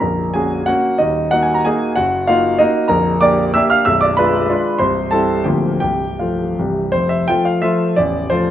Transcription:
0.00 A#0 A#1 A#4 A#5
0.34 A#3 C#4 F#4 G#4 G#5
0.66 A#3 C#4 F#4 F#5
0.98 D#1 D#2 D#4 D#5
1.31 A#3 D#4 F#4 F#5
1.42 G#5
1.54 A#5
1.65 A#3 D#4 F#4 G#4 G#5
1.95 F#1 F#2 F#4 F#5
2.27 A#3 D#4 F4 F#4 F5
2.58 A#3 D#4 F#4 D#5
2.88 A#0 A#1 A#4 A#5
3.21 A#3 D4 G4 D5 D6
3.54 A#3 D4 G4 E5 E6
3.70 F5 F6
3.85 B0 B1 E5 E6
4.01 D5 D6
4.17 G#3 D4 F4 B4 B5
4.49 G#3 D4 F4
4.79 C1 C2 C5 C6
5.11 G3 C4 E4 A4 A5
5.44 D1 D2 F3 A#3 F4 G4 G5
5.80 C1 C2 G4 G5
6.19 F3 A3 F4 F5
6.59 C1 C2 E3 G3 G4
6.92 F1 F2 C5
7.09 E5
7.28 F3 A3 F4 G5
7.45 F5
7.62 F3 A3 F4 E5
7.96 A0 A1 D5
8.30 F3 A3 F4 C5

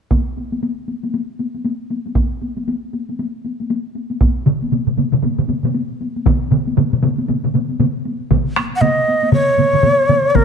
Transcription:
0.11 taiko, taiko high
0.37 taiko high
0.52 taiko high
0.63 taiko high
0.88 taiko high
1.03 taiko high
1.14 taiko high
1.39 taiko high
1.54 taiko high
1.64 taiko high
1.90 taiko high
2.06 taiko high
2.15 taiko, taiko high
2.42 taiko high
2.57 taiko high
2.68 taiko high
2.93 taiko high
3.09 taiko high
3.19 taiko high
3.45 taiko high
3.60 taiko high
3.70 taiko high
3.95 taiko high
4.11 taiko high
4.21 taiko, taiko high
4.46 taiko low-mid, taiko mid
4.62 taiko high
4.72 taiko low-mid, taiko mid, taiko high
4.87 taiko low-mid, taiko mid
4.97 taiko low-mid, taiko mid, taiko high
5.12 taiko low-mid, taiko mid
5.23 taiko low-mid, taiko mid, taiko high
5.38 taiko low-mid, taiko mid
5.49 taiko low-mid, taiko mid, taiko high
5.64 taiko low-mid, taiko mid, taiko high
5.75 taiko high
6.01 taiko high
6.16 taiko high
6.26 taiko, taiko low-mid, taiko mid, taiko high
6.51 taiko low-mid, taiko mid, taiko high
6.67 taiko high
6.77 taiko low-mid, taiko mid, taiko high
6.93 taiko low-mid, taiko mid
7.03 taiko low-mid, taiko mid, taiko high
7.18 taiko high
7.28 taiko low-mid, taiko mid, taiko high
7.44 taiko low-mid, taiko mid
7.54 taiko low-mid, taiko mid, taiko high
7.69 taiko high
7.80 taiko low-mid, taiko mid, taiko high
8.05 taiko high
8.31 taiko, taiko low-mid, taiko mid, taiko high
8.46 taiko high
8.56 taiko rim, taiko high
8.72 taiko high
8.76 F#5
8.81 D#5, taiko low-mid, taiko mid, taiko high
8.97 taiko high
9.08 taiko high
9.23 taiko high
9.32 C#5, taiko low-mid, taiko mid, taiko high
9.48 taiko high
9.58 taiko low-mid, taiko mid, taiko high
9.73 taiko low-mid, taiko mid, taiko high
9.83 taiko low-mid, taiko mid, taiko high
9.99 taiko high
10.09 taiko low-mid, taiko mid, taiko high
10.26 taiko high
10.30 C#5
10.35 A#4, taiko, taiko low-mid, taiko mid, taiko high

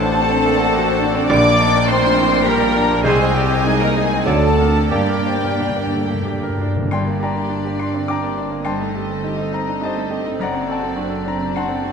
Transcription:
Already playing: A1 A3 D4 A4 C5 D5 F#5 A5
0.02 C5
0.16 C4 D4
0.31 C4
0.45 A#3
0.59 C4
0.75 F#4
0.88 C5
1.03 D4
1.15 C4
1.29 A#1 G3 A#3 D4 A#4 D5 G5 D6
1.45 D5
1.60 D#5
1.75 D5
1.85 A3 C4 C5 C6
1.90 D4
2.04 A#2
2.18 A2
2.32 D4
2.44 G3 A#3 G4 A#4 A#5
2.60 D5
2.75 D4
2.90 A#2
3.03 C2 G#3 C4 G#4 C5 D#5 G#5
3.22 C5
3.34 G3 G4 D5 G5
3.52 C5
3.63 G#3 D#4 G#4 G#5
3.78 A#3 C4 A#5
3.82 A#4
3.94 G#3 A#3 G#4 G#5
4.14 C4
4.25 D2 F#3 A3 D4 A4 D5 F#5 A5
4.43 A4
4.57 C4 A#4
4.77 A4
4.89 G2 G3 A#3 G4 D5 G5
4.94 G2
5.09 G2 A#4
5.19 G2
5.27 G2 C5
5.35 G2
5.44 G2 A#4
5.52 G2
5.60 G2 D4
5.69 G2
5.75 G2 A#3
5.87 G2
5.93 G2 A3
6.05 G2 A#3
6.14 G2
6.22 G2 G4
6.32 G2
6.41 G2 A#4
6.49 G2
6.57 G2 D4
6.67 G2
6.76 G2 A#3
6.83 G2
6.91 G1 G2 G3 D4 D5 G5 C6
7.06 A#3
7.20 D4 G4 D5 G5 A#5
7.35 A#3 G4
7.50 D4
7.64 A#3 G4
7.79 G3 D4 C6
7.94 A#3 C4
8.08 D4 G5 A#5 D6
8.23 A#3 G4
8.37 D4
8.51 A#3
8.65 G2 C4 D#5 G5 A5 C6
8.80 A3 D#4
8.95 G4 A4
9.10 A3 A4
9.24 D#4 G4
9.38 D#4 A4
9.52 C4 D#4 A#5
9.67 D4 D#4
9.81 D#4 G4 C5 A5
9.85 D#5
9.95 A3 A4
10.11 D#4 G4
10.25 A3 D#4
10.39 F#1 F#2 C4 D5 A#5
10.43 F#5
10.53 C4 D4
10.67 F#4 A4
10.72 D5 F#5 A5
10.82 C4 A4
10.96 D4 F#4
11.10 D4 A4
11.24 C4 D4 A#5
11.38 C4 D4
11.54 D4 F#4 F#5 A5 C6
11.68 C4 A4
11.82 D4 F#4

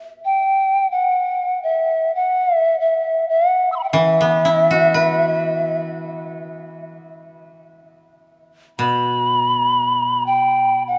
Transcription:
0.25 G5
0.91 F#5
1.63 E5
2.15 F#5
2.56 E5
2.80 E5
3.29 E5
3.48 F#5
3.72 C6 E6
3.79 B5
3.83 G5
3.89 E5 F#5
3.93 E3
4.21 B3
4.45 E4
4.71 F#4
4.94 B4
8.79 B2 B5
10.27 G5
10.88 F#5

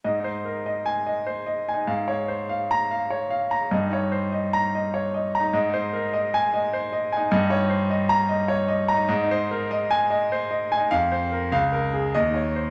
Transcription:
0.04 G#2 D#5
0.20 D#4
0.24 C5
0.45 A#4
0.66 D#5
0.86 G#5
1.06 D#5
1.27 C5
1.46 D#5
1.69 G#5
1.74 D#4
1.87 G#2 F5
2.08 C#5
2.28 C5
2.49 F5
2.71 A#5
2.91 F5
3.10 C#5
3.30 F5
3.51 A#5
3.71 G2 D#5
3.86 D#4
3.93 C#5
4.12 C5
4.32 D#5
4.53 A#5
4.75 D#5
4.94 C#5
5.14 D#5
5.35 A#5
5.40 D#4
5.53 G#2 D#5
5.69 D#4
5.74 C5
5.93 A#4
6.13 D#5
6.34 G#5
6.54 D#5
6.73 C5
6.93 D#5
7.12 G#5
7.17 D#4
7.31 G2 D#5
7.46 D#4
7.50 C#5
7.70 C5
7.90 D#5
8.09 A#5
8.29 D#5
8.48 C#5
8.68 D#5
8.88 A#5
8.94 D#4
9.08 G#2 D#5
9.24 D#4
9.31 C5
9.51 A#4
9.71 D#5
9.91 G#5
10.10 D#5
10.32 C5
10.51 D#5
10.72 G#5
10.77 D#4
10.91 F2 F5
11.12 C5
11.32 A#4
11.52 C#2 F5
11.72 A#4
11.93 G#4
12.14 D#2 D#5
12.30 D#4
12.34 C#5
12.56 C5

